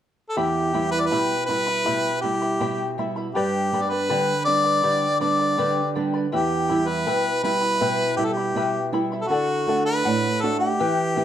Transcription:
0.30 harmonica A4
0.36 nylon-string guitar E2, charango E4 G4 E5 G5 B5, harmonica G4
0.73 nylon-string guitar G3 B3 E4, charango E4 E5 G5 B5
0.92 charango E4 E5 B5, harmonica B4
1.00 harmonica D5
1.06 harmonica B4
1.11 nylon-string guitar B2, charango E4 G4 E5 G5 B5
1.46 nylon-string guitar G3 B3 E4, charango E4 E5 G5 B5, harmonica B4
1.67 charango E4 E5 B5
1.85 nylon-string guitar B2, charango E4 G4 E5 G5 B5
2.22 nylon-string guitar G3 B3 E4, charango E4 E5 G5 B5, harmonica G4
2.42 charango E4 E5 B5
2.61 nylon-string guitar B2, charango E4 G4 E5 G5 B5
2.98 nylon-string guitar G3 B3 E4, charango E4 E5 G5 B5
3.16 charango E4 E5 B5
3.35 nylon-string guitar G2, harmonica G4, charango G4 B4 D5 G5 B5
3.73 nylon-string guitar G3 B3 D4, charango B4 D5 G5 B5
3.83 harmonica D5
3.91 harmonica B4, charango B4 D5 B5
4.09 nylon-string guitar D3, charango G4 B4 D5 G5 B5
4.45 nylon-string guitar G3 B3 D4, charango B4 D5 G5 B5, harmonica D5
4.64 charango B4 D5 B5
4.83 nylon-string guitar D3, charango G4 B4 D5 G5 B5
5.20 nylon-string guitar G3 B3 D4, charango B4 D5 G5 B5, harmonica D5
5.39 charango B4 D5 B5
5.58 nylon-string guitar D3, charango G4 B4 D5 G5 B5
5.95 nylon-string guitar G3 B3 D4, charango B4 D5 G5 B5
6.14 charango B4 D5 B5
6.32 nylon-string guitar E2, charango E4 B4 E5 G5 B5, harmonica G4
6.68 nylon-string guitar G3 B3 E4, charango E4 E5 G5 B5
6.87 charango E4 E5 B5, harmonica B4
7.06 nylon-string guitar B2, charango E4 B4 E5 G5 B5
7.43 nylon-string guitar G3 B3 E4, charango E4 E5 G5 B5, harmonica B4
7.61 charango E4 E5 B5
7.80 nylon-string guitar B2, charango E4 B4 E5 G5 B5
8.17 nylon-string guitar G3 B3 E4, charango E4 E5 G5 B5, harmonica G4
8.25 harmonica A4
8.33 harmonica G4
8.37 charango E4 E5 B5
8.55 nylon-string guitar B2, charango E4 B4 E5 G5 B5
8.92 nylon-string guitar G3 B3 E4, charango E4 E5 G5 B5
9.12 charango E4 E5 B5
9.21 harmonica A4
9.28 nylon-string guitar D3, harmonica F#4, charango A4 D5 F#5
9.67 nylon-string guitar A3 D4 F#4, charango A4 D5 F#5
9.86 harmonica B4, charango D5 F#5
10.05 nylon-string guitar A2, charango A4 D5 F#5
10.41 nylon-string guitar A3 D4 F#4, harmonica A4, charango A4 D5 F#5
10.59 harmonica G4, charango D5 F#5
10.79 nylon-string guitar E3, charango E4 G4 B4 E5 G5
11.16 nylon-string guitar B3 E4 G4, charango E4 B4 E5 G5

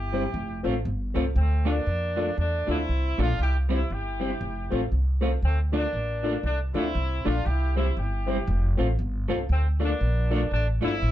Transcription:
Already playing: upright bass G1, horn section E4 G4
0.13 clean electric guitar G3 C4 E4, upright piano C4 E4 G4 C5
0.34 upright bass F1, muted clean electric guitar stroke
0.63 upright bass A1, clean electric guitar A3 C4 F4, upright piano C4 F4 A4 C5
0.85 upright bass G1
1.14 upright bass C2, clean electric guitar A3 C4 F4, upright piano C4 F4 A4 C5
1.36 upright bass D2, horn section A3 C4
1.65 clean electric guitar A3 D4 F4, horn section A#3 D4, upright piano D4 F4 A4 D5
1.87 upright bass F2
2.16 clean electric guitar A3 D4 F4, upright piano D4 F4 A4 D5
2.37 upright bass E2, horn section A3 D4, muted clean electric guitar stroke
2.67 upright bass D2, clean electric guitar A3 D4 F4, horn section C4 E4, upright piano D4 F4 A4 D5
2.89 upright bass C2
3.18 upright bass A#1, clean electric guitar A3 D4 F4, upright piano D4 F4 A4 D5, horn section D4 F4
3.39 upright bass C2, horn section E4 G4
3.69 clean electric guitar G3 C4 E4, upright piano C4 E4 G4 C5, horn section C4 E4
3.90 upright bass G1, horn section E4 G4
4.20 clean electric guitar G3 C4 E4, upright piano C4 E4 G4 C5
4.41 upright bass F1
4.70 upright bass A1, clean electric guitar A3 C4 F4, upright piano C4 F4 A4 C5
4.92 upright bass C2
5.21 clean electric guitar A3 C4 F4, upright piano C4 F4 A4 C5
5.42 upright bass D2, horn section A3 C4
5.72 clean electric guitar A3 D4 F4, horn section A#3 D4, upright piano D4 F4 A4 D5
5.93 upright bass A1
6.23 clean electric guitar A3 D4 F4, upright piano D4 F4 A4 D5
6.43 upright bass C2, horn section A3 D4, muted clean electric guitar stroke
6.74 upright bass D2, clean electric guitar A3 D4 F4, horn section C4 E4, upright piano D4 F4 A4 D5
6.95 upright bass C2
7.24 upright bass A#1, clean electric guitar A3 D4 F4, upright piano D4 F4 A4 D5, horn section D4 F4
7.46 upright bass C2, horn section E4 G4
7.76 clean electric guitar G3 C4 E4, upright piano C4 E4 G4 C5, horn section C4 E4
7.97 upright bass G1, horn section E4 G4
8.26 clean electric guitar G3 C4 E4, upright piano C4 E4 G4 C5
8.47 upright bass F1, muted clean electric guitar stroke
8.77 upright bass A1, clean electric guitar A3 C4 F4, upright piano C4 F4 A4 C5
8.99 upright bass G1
9.28 upright bass C2, clean electric guitar A3 C4 F4, upright piano C4 F4 A4 C5
9.49 upright bass D2, horn section A3 C4
9.79 clean electric guitar A3 D4 F4, horn section A#3 D4, upright piano D4 F4 A4 D5
10.01 upright bass A#1
10.30 clean electric guitar A3 D4 F4, upright piano D4 F4 A4 D5
10.51 upright bass A1, horn section A3 D4, muted clean electric guitar stroke
10.81 upright bass G1, clean electric guitar A3 D4 F4, horn section C4 E4, upright piano D4 F4 A4 D5
11.02 upright bass A1

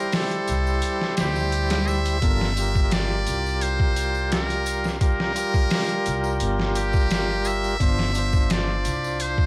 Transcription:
Already playing: tonewheel organ G3 E4 G4 C5, muted trumpet A#4
0.12 muted trumpet A4, snare, open hi-hat, tambourine
0.31 closed hi-hat
0.48 upright bass C2, closed hi-hat, tambourine
0.67 tambourine
0.82 closed hi-hat, tambourine
1.01 snare
1.17 upright bass D2, muted trumpet G4, snare, closed hi-hat, tambourine
1.36 tambourine
1.52 closed hi-hat, tambourine
1.70 snare, closed hi-hat
1.87 muted trumpet E5, tambourine
2.05 closed hi-hat, tambourine
2.21 upright bass G1, tonewheel organ G3 F4 A4 A#4, kick, closed hi-hat, tambourine
2.41 snare
2.56 tonewheel organ G3 F4 G4, closed hi-hat, tambourine
2.61 tonewheel organ A#4
2.75 kick, tambourine
2.91 muted trumpet D5, snare, closed hi-hat, tambourine
3.27 upright bass C2, closed hi-hat, tambourine
3.46 tambourine
3.61 muted trumpet C5, closed hi-hat, tambourine
3.80 kick
3.96 closed hi-hat, tambourine
4.15 tambourine
4.32 muted trumpet A#4, snare, closed hi-hat, tambourine
4.50 closed hi-hat
4.66 closed hi-hat, tambourine
4.84 snare, tambourine
5.00 tonewheel organ G3 F4 G4 A#4, muted trumpet A#4, kick, closed hi-hat, tambourine
5.20 snare
5.34 tonewheel organ G3 F4 G4, closed hi-hat, tambourine
5.39 tonewheel organ A#4
5.54 kick, tambourine
5.70 snare, open hi-hat, tambourine
5.89 closed hi-hat
6.06 upright bass C2, closed hi-hat, tambourine
6.24 tambourine
6.40 upright bass G1, closed hi-hat, tambourine
6.60 snare
6.75 muted trumpet G4, closed hi-hat, tambourine
6.93 kick, tambourine
7.10 snare, closed hi-hat, tambourine
7.45 muted trumpet E5, closed hi-hat, tambourine
7.64 tambourine
7.79 upright bass G1, tonewheel organ D4 F4 C5, kick, closed hi-hat, tambourine
7.99 snare
8.13 tonewheel organ D4 F4, closed hi-hat, tambourine
8.18 tonewheel organ C5
8.33 kick, tambourine
8.50 muted trumpet D5, snare, closed hi-hat, tambourine
8.85 upright bass C2, closed hi-hat, tambourine
9.04 tambourine
9.19 muted trumpet C5, closed hi-hat, tambourine
9.38 kick

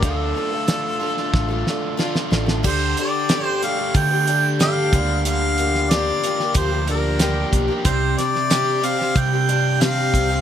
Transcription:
0.03 fingered electric bass D2, twelve-string acoustic guitar D3 F3 D4 F4 A4, overdriven electric guitar A3, harmonica A4, kick, closed hi-hat
0.35 twelve-string acoustic guitar F3 D4 F4 A4
0.53 twelve-string acoustic guitar D4 F4 A4
0.67 twelve-string acoustic guitar D3 F3 D4 F4 A4, snare, closed hi-hat
1.00 twelve-string acoustic guitar F3 D4 F4 A4, overdriven electric guitar A3
1.04 overdriven electric guitar D3
1.17 twelve-string acoustic guitar D4 F4 A4, snare
1.33 fingered electric bass A1, kick, snare
1.49 twelve-string acoustic guitar D4 F4 A4
1.67 twelve-string acoustic guitar F3 D4 F4 A4, snare
1.97 twelve-string acoustic guitar D3 F3 D4 F4 A4, overdriven electric guitar A3, snare
2.14 twelve-string acoustic guitar D4 F4 A4, snare
2.31 fingered electric bass A1, twelve-string acoustic guitar F3 D4 F4 A4, snare
2.46 twelve-string acoustic guitar D4 F4 A4, snare
2.63 fingered electric bass D2, twelve-string acoustic guitar D3 G3 D4 G4 A4, harmonica C5, kick, crash
2.97 twelve-string acoustic guitar G3 D4 G4 A4, harmonica D5, closed hi-hat
3.29 twelve-string acoustic guitar D3 G3 D4 G4 A4, snare, closed hi-hat
3.45 harmonica C5
3.62 twelve-string acoustic guitar G3 D4 G4 A4, overdriven electric guitar A3, harmonica F5, closed hi-hat
3.78 twelve-string acoustic guitar D4 G4 A4
3.94 fingered electric bass D3, overdriven electric guitar D3, harmonica G5, kick, closed hi-hat
4.11 twelve-string acoustic guitar D4 G4 A4
4.27 twelve-string acoustic guitar G3 D4 G4 A4, closed hi-hat
4.59 twelve-string acoustic guitar D3 G3 D4 G4 A4, harmonica F5, snare, closed hi-hat
4.93 fingered electric bass D2, twelve-string acoustic guitar D3 F3 A#3 D4 G4, kick, closed hi-hat
5.25 overdriven electric guitar D3, harmonica F5, closed hi-hat
5.58 twelve-string acoustic guitar F3 A#3 D4 G4, closed hi-hat
5.75 snare
5.90 twelve-string acoustic guitar D3 F3 A#3 D4 G4, harmonica D5, snare, closed hi-hat
6.24 twelve-string acoustic guitar F3 A#3 D4 G4, closed hi-hat
6.40 twelve-string acoustic guitar A#3 D4 G4, snare
6.54 fingered electric bass D2, overdriven electric guitar F3, harmonica C5, kick, closed hi-hat
6.71 twelve-string acoustic guitar A#3 D4 G4
6.87 twelve-string acoustic guitar F3 A#3 D4 G4, harmonica A#4, closed hi-hat
7.19 twelve-string acoustic guitar D3 F3 A#3 D4 G4, snare, closed hi-hat
7.53 fingered electric bass B1, overdriven electric guitar A#3, kick, closed hi-hat
7.68 twelve-string acoustic guitar A#3 D4 G4
7.85 fingered electric bass C2, twelve-string acoustic guitar C3 G3 C4 D4 G4, harmonica C5, kick, closed hi-hat
8.17 twelve-string acoustic guitar G3 C4 D4 G4, harmonica D5, snare, closed hi-hat
8.36 snare
8.50 twelve-string acoustic guitar C3 G3 C4 D4 G4, snare, closed hi-hat
8.81 twelve-string acoustic guitar G3 C4 D4 G4, closed hi-hat
8.85 harmonica F5
8.98 twelve-string acoustic guitar C4 D4 G4, snare
9.16 fingered electric bass C3, overdriven electric guitar G3, harmonica G5, kick, closed hi-hat
9.33 twelve-string acoustic guitar C4 D4 G4
9.48 twelve-string acoustic guitar G3 C4 D4 G4, closed hi-hat
9.80 twelve-string acoustic guitar C3 G3 C4 D4 G4, harmonica F5, snare, closed hi-hat
10.14 fingered electric bass C2, overdriven electric guitar C4, kick, closed hi-hat
10.29 twelve-string acoustic guitar C4 D4 G4

